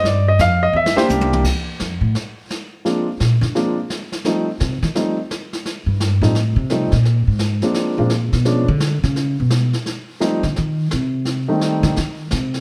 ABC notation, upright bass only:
X:1
M:4/4
L:1/8
Q:"Swing" 1/4=171
K:Fmix
V:1 name="Upright bass" clef=bass
G,,2 F,,2 =E,, z C,,2 | z2 F,, A,, z4 | z2 B,, D, z4 | z2 C, E, z4 |
z G,,2 A,,2 C,2 B,,- | B,, _A,,2 z2 B,,2 =B,,- | =B,, D,2 _D,2 B,,2 z | z3 D, E,2 C,2- |
C, z2 D, E,2 C,2 |]